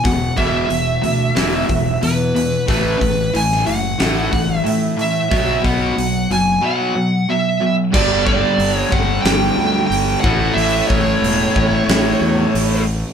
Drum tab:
CC |----------------|----------------|----------------|x---------------|
HH |o-o-o-o-o-o-o-o-|o-o-o-o-o-o-o-o-|o-o-o-o---------|----o---o---o---|
SD |--------o-------|-----o--o-------|----------------|--------o-------|
BD |o-o-------o-----|o-o-------o-----|o-o-------------|o-o---o-------o-|

CC |----------------|
HH |o---o---o---o---|
SD |--------o-------|
BD |--o---o---------|